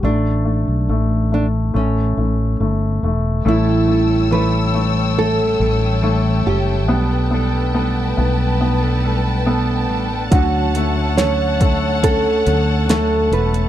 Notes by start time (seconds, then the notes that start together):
0.03 A1 A3 D4
0.45 A3
0.68 B1
0.89 A1 A3
1.32 A3 D4
1.74 A1 A3 C#4
2.17 A1 A3
2.60 G1 A3
3.03 E1 A3
3.45 A1 A2 E3 G3 A3 C#4 E4 A4 C#5 G5 A5 E6
3.88 G3 A3 C#4 A4
4.10 G3 A3 C#4 A4
4.31 A2 E3 G3 A3 C#4 A4 B4
4.74 A3
5.18 A3 A4
5.38 G3 A3 C#4 A4
5.59 A1 G3 A3 C#4 A4
5.80 G3 A3 C#4 A4
6.02 A2 E3 G3 A3 C#4 A4
6.45 F#1 G3 A3 C#4 G4 A4
6.66 G3 A3 C#4 A4
6.88 B1 B2 G3 A3 B3 D4 A4 B4
7.09 A3 D4 A4
7.31 G3 A3 B3 D4 A4
7.53 A3 D4 A4
7.74 B2 G3 A3 B3 D4 A4
8.17 B1 B3
8.61 B3
8.81 A3 D4 A4
9.03 G3 A3 D4 A4
9.46 B2 G3 A3 B3 D4 A4
9.88 A1 G3 A3 D4 A4
10.10 A3 D4 A4
10.31 D2 D3 F#3 A3 C#4 F#4 A4 C#5 F#5, kick, closed hi-hat
10.74 F#3 A3 C#4 A4, closed hi-hat
10.96 A3 C#4 A4
11.17 D3 F#3 A3 C#4 A4 C#5, snare, closed hi-hat
11.61 A3, kick, closed hi-hat
12.03 C#4 A4, kick, closed hi-hat
12.24 A3 C#4 A4
12.45 D2 F#3 A3 C#4 A4, closed hi-hat
12.66 A3 C#4 A4
12.88 D3 F#3 A3 C#4 A4, snare, closed hi-hat
13.31 E1 F#3 A3 C#4 A4 B4, closed hi-hat
13.52 A3 C#4 A4, closed hi-hat